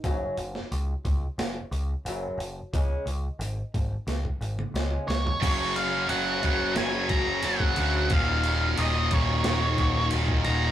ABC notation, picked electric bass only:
X:1
M:4/4
L:1/8
Q:1/4=90
K:Gb
V:1 name="Picked electric bass" clef=bass
G,,, G,,, D,, D,, G,,, D,, G,,, G,,, | D,, D,, A,,, A,,, D,, A,,, D,, D,, | G,,,2 G,,, G,,, G,,, G,,, G,,, =D,, | E,,,2 E,,, E,,, E,,, E,,, E,,, E,,, |]